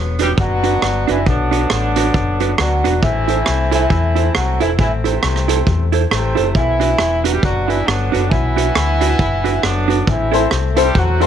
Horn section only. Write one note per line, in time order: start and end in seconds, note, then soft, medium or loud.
0.00 0.34 F#3 medium
0.00 0.34 B3 medium
0.21 0.29 G3 medium
0.21 0.29 G4 loud
0.39 1.05 F#3 loud
0.39 1.23 B3 medium
0.39 1.23 D4 medium
0.39 1.05 F#4 loud
1.10 1.27 E3 medium
1.10 1.27 E4 medium
1.28 1.70 D3 loud
1.28 1.70 F#3 medium
1.28 1.70 B3 medium
1.28 1.70 D4 loud
1.71 2.55 D3 medium
1.71 2.55 F#3 medium
1.71 2.55 B3 medium
1.71 2.55 D4 medium
2.59 3.00 F#3 medium
2.59 3.00 B3 medium
2.59 3.00 D4 medium
2.59 3.00 F#4 medium
3.03 3.69 E3 medium
3.03 3.73 A3 medium
3.03 3.73 C4 medium
3.03 3.69 E4 loud
3.74 4.31 E3 medium
3.74 4.57 A3 medium
3.74 4.57 C4 medium
3.74 4.31 E4 medium
4.36 4.61 F#3 medium
4.36 4.61 F#4 medium
4.61 4.69 E3 medium
4.61 4.69 E4 medium
4.80 4.91 E3 medium
4.80 5.06 A3 medium
4.80 5.05 C4 medium
4.80 4.91 E4 medium
5.07 5.90 C3 medium
5.07 5.90 E3 medium
5.07 5.90 A3 medium
5.07 5.90 C4 medium
6.12 6.52 C3 medium
6.12 6.53 E3 medium
6.12 6.53 A3 medium
6.12 6.52 C4 medium
6.56 7.22 E3 medium
6.56 7.40 B3 medium
6.56 7.22 E4 loud
7.25 7.33 F#3 medium
7.25 7.33 F#4 medium
7.33 7.42 G3 medium
7.33 7.42 G4 medium
7.43 7.67 F#3 loud
7.43 7.87 B3 medium
7.43 7.85 D4 medium
7.43 7.67 F#4 loud
7.68 7.86 E3 medium
7.68 7.86 E4 loud
7.86 8.30 D3 medium
7.86 8.71 F#3 medium
7.86 8.30 B3 medium
7.86 8.30 D4 medium
8.30 9.62 E3 loud
8.30 9.59 B3 medium
8.30 9.62 E4 loud
9.63 10.07 D3 medium
9.63 10.05 F#3 medium
9.63 10.04 B3 medium
9.63 10.07 D4 medium
10.09 10.48 E3 medium
10.09 10.73 A3 medium
10.09 10.92 C4 medium
10.09 10.48 E4 medium
10.73 10.78 A3 medium
10.73 10.78 A4 medium
10.79 10.96 G3 medium
10.79 10.96 G4 loud
10.98 11.27 F#3 loud
10.98 11.27 A3 medium
10.98 11.27 C4 medium
10.98 11.27 F#4 loud